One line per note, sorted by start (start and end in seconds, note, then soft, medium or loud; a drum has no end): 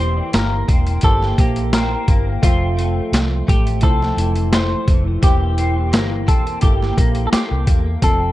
0.00 0.19 E1 loud
0.00 2.45 E3 medium
0.00 0.79 A#3 medium
0.00 0.67 C4 medium
0.00 0.79 E4 medium
0.00 0.80 G4 medium
0.00 1.02 G4 medium
0.00 0.34 C5 medium
0.00 0.80 C5 medium
0.33 0.61 G1 medium
0.33 1.37 A#3 medium
0.33 1.04 A#4 loud
0.33 snare loud
0.33 closed hi-hat medium
0.68 0.96 E1 medium
0.68 1.73 C4 medium
0.68 kick medium
0.68 closed hi-hat medium
0.87 closed hi-hat soft
1.01 1.31 G1 loud
1.01 2.19 A#3 medium
1.01 2.19 E4 medium
1.01 2.51 G4 medium
1.01 2.19 G4 medium
1.01 1.40 A4 medium
1.01 kick medium
1.01 closed hi-hat medium
1.05 2.20 C5 medium
1.23 snare soft
1.38 1.94 A#1 medium
1.38 2.07 A#3 medium
1.38 1.75 G4 medium
1.38 kick medium
1.38 closed hi-hat medium
1.56 closed hi-hat soft
1.73 2.43 C4 medium
1.73 2.24 A#4 medium
1.73 snare loud
1.73 closed hi-hat medium
2.08 2.36 G1 medium
2.08 2.51 A#3 medium
2.08 kick medium
2.08 closed hi-hat medium
2.42 2.99 F1 medium
2.42 5.22 F2 medium
2.42 3.59 F3 medium
2.42 3.58 A3 medium
2.42 3.82 C4 medium
2.42 3.49 F4 loud
2.42 3.59 C5 medium
2.42 3.58 E5 medium
2.42 kick loud
2.42 closed hi-hat loud
2.77 3.46 A3 medium
2.77 closed hi-hat medium
3.12 3.40 C2 medium
3.12 snare medium
3.12 closed hi-hat medium
3.47 3.83 A1 medium
3.47 4.52 A3 medium
3.47 3.85 G4 loud
3.47 kick medium
3.47 closed hi-hat medium
3.67 closed hi-hat soft
3.81 4.11 C2 loud
3.81 4.99 F3 medium
3.81 4.98 A3 medium
3.81 5.57 C4 medium
3.81 4.98 E4 medium
3.81 4.49 A4 medium
3.81 4.99 C5 medium
3.81 kick medium
3.81 closed hi-hat medium
4.02 snare soft
4.17 4.73 F1 medium
4.17 4.87 E3 medium
4.17 closed hi-hat medium
4.36 closed hi-hat medium
4.53 5.30 A3 medium
4.53 5.04 C5 loud
4.53 snare loud
4.53 closed hi-hat medium
4.87 5.15 F1 medium
4.87 5.22 E3 medium
4.87 kick medium
4.87 closed hi-hat medium
5.22 5.93 E1 loud
5.22 8.32 E3 medium
5.22 6.38 A#3 medium
5.22 6.38 E4 medium
5.22 6.61 G4 medium
5.22 6.24 G4 medium
5.22 6.39 G4 medium
5.22 6.39 C5 medium
5.22 kick loud
5.22 closed hi-hat loud
5.58 6.26 C4 medium
5.58 closed hi-hat medium
5.92 6.28 G1 medium
5.92 6.97 A#3 medium
5.92 snare loud
5.92 closed hi-hat medium
6.27 6.55 E1 medium
6.27 7.33 C4 medium
6.27 6.62 A4 medium
6.27 kick medium
6.27 closed hi-hat medium
6.47 closed hi-hat soft
6.61 6.90 G1 loud
6.61 7.78 A#3 medium
6.61 7.78 E4 medium
6.61 7.26 G4 medium
6.61 8.10 G4 medium
6.61 7.79 G4 medium
6.61 7.79 A4 medium
6.61 kick medium
6.61 closed hi-hat medium
6.83 snare soft
6.98 7.25 A#1 medium
6.98 7.66 A#3 medium
6.98 kick medium
6.98 closed hi-hat medium
7.15 closed hi-hat soft
7.27 7.32 A4 medium
7.32 8.03 C4 medium
7.32 8.03 G4 medium
7.32 muted fingered electric bass stroke soft
7.32 snare loud
7.32 closed hi-hat medium
7.51 7.64 C2 medium
7.67 7.95 E2 medium
7.67 8.10 A#3 soft
7.67 kick medium
7.67 closed hi-hat medium
8.02 8.32 F1 medium
8.02 8.32 F3 medium
8.02 8.32 C4 medium
8.02 8.32 A4 loud
8.02 8.32 A4 medium
8.02 8.32 E5 medium
8.02 kick loud
8.02 closed hi-hat loud